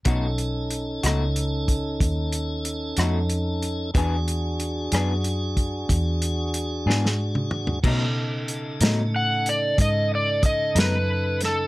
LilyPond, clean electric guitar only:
\new Staff \with { instrumentName = "Clean electric guitar" } { \time 12/8 \key b \mixolydian \tempo 4. = 62 <b, a dis' fis'>8 r4 <b, a dis' fis'>8 r2 r8 <b, a dis' fis'>8 r4 | <e b d' gis'>8 r4 <e b d' gis'>8 r2 r8 <e b d' gis'>8 r4 | <b, fis a dis'>8 r4 <b, fis a dis'>8 r2 r8 <b, fis a dis'>8 r4 | }